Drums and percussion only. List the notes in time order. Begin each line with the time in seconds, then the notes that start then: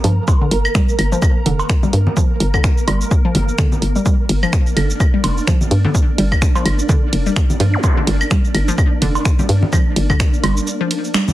0.04 open hi-hat
0.28 kick, cowbell, shaker
0.51 open hi-hat
0.65 claves, shaker
0.75 finger snap, kick, shaker
0.89 shaker
0.99 open hi-hat, claves
1.12 shaker
1.22 kick, claves, shaker
1.46 open hi-hat
1.59 cowbell, shaker
1.69 finger snap, kick, shaker
1.83 low conga, shaker
1.93 open hi-hat
2.07 low conga
2.17 kick, shaker
2.40 open hi-hat
2.54 kick, claves, shaker
2.64 finger snap, kick, shaker
2.78 shaker
2.88 open hi-hat, cowbell, claves
3.01 shaker
3.11 kick, shaker
3.35 open hi-hat, low conga
3.48 shaker
3.58 finger snap, kick, shaker
3.72 low conga, shaker
3.82 open hi-hat
3.96 shaker
4.06 kick, shaker
4.29 open hi-hat, ride
4.43 claves, shaker
4.53 finger snap, kick, shaker
4.67 shaker
4.77 open hi-hat, ride, claves
4.90 shaker
5.00 kick, claves, shaker
5.24 open hi-hat, ride, cowbell
5.37 shaker
5.47 finger snap, kick, shaker
5.61 low conga, shaker
5.71 open hi-hat, ride
5.85 low conga
5.95 kick, shaker
6.18 open hi-hat, ride
6.32 kick, claves, shaker
6.42 finger snap, kick, shaker
6.56 cowbell, shaker
6.66 open hi-hat, ride, claves
6.79 shaker
6.89 kick, shaker
7.13 open hi-hat, ride
7.26 shaker
7.36 finger snap, kick, shaker
7.50 low conga, shaker
7.60 open hi-hat, ride
7.84 kick, cowbell, shaker
8.07 open hi-hat, ride
8.21 claves, shaker
8.31 finger snap, kick, shaker
8.45 shaker
8.54 open hi-hat, ride, claves
8.68 shaker
8.78 kick, claves, shaker
9.02 open hi-hat, ride
9.15 cowbell, shaker
9.25 finger snap, kick, shaker
9.39 low conga, shaker
9.49 open hi-hat, ride
9.63 low conga
9.73 kick, claves, shaker
9.96 open hi-hat, ride
10.10 kick, claves, shaker
10.20 finger snap, kick, shaker
10.34 shaker
10.44 open hi-hat, ride, cowbell, claves
10.57 shaker
10.67 shaker
10.91 open hi-hat, ride
11.04 shaker
11.14 finger snap, shaker
11.28 low conga, shaker